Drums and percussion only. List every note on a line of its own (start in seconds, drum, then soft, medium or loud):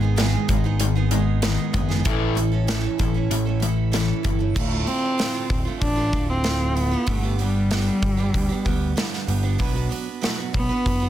0.18 snare loud
0.18 closed hi-hat medium
0.49 kick medium
0.49 closed hi-hat medium
0.80 closed hi-hat medium
1.11 closed hi-hat medium
1.42 snare loud
1.42 closed hi-hat medium
1.74 kick medium
1.74 closed hi-hat medium
1.90 snare soft
2.05 kick loud
2.05 closed hi-hat medium
2.37 closed hi-hat medium
2.68 snare loud
2.68 closed hi-hat medium
2.99 kick medium
2.99 closed hi-hat medium
3.31 closed hi-hat medium
3.62 closed hi-hat medium
3.93 snare loud
3.93 closed hi-hat medium
4.24 kick medium
4.24 closed hi-hat medium
4.56 kick loud
4.56 crash medium
4.87 open hi-hat soft
5.19 snare medium
5.19 open hi-hat medium
5.50 kick medium
5.50 open hi-hat soft
5.81 kick medium
5.81 open hi-hat medium
6.13 kick medium
6.13 open hi-hat soft
6.44 snare loud
6.44 open hi-hat medium
6.77 open hi-hat medium
7.07 kick loud
7.07 open hi-hat medium
7.39 open hi-hat soft
7.71 snare loud
7.71 open hi-hat medium
8.03 kick medium
8.03 open hi-hat soft
8.34 kick medium
8.34 open hi-hat medium
8.66 kick medium
8.66 open hi-hat soft
8.97 snare loud
8.97 open hi-hat medium
9.14 snare soft
9.28 open hi-hat soft
9.60 kick loud
9.60 open hi-hat medium
9.92 open hi-hat soft
10.23 snare loud
10.23 open hi-hat medium
10.54 kick medium
10.54 open hi-hat soft
10.86 kick medium
10.86 open hi-hat medium